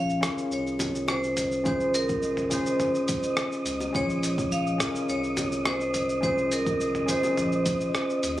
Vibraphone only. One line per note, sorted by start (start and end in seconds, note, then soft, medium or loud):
0.00 0.48 F5 loud
0.53 1.11 C#5 loud
1.09 1.62 C5 loud
1.66 1.93 C5 loud
1.95 2.48 A#4 loud
2.53 3.62 C5 medium
3.96 4.48 C#5 loud
4.52 5.11 F5 loud
5.10 5.62 C#5 loud
5.67 6.22 C5 loud
6.24 6.50 C5 loud
6.53 7.05 A#4 loud
7.10 8.19 C5 medium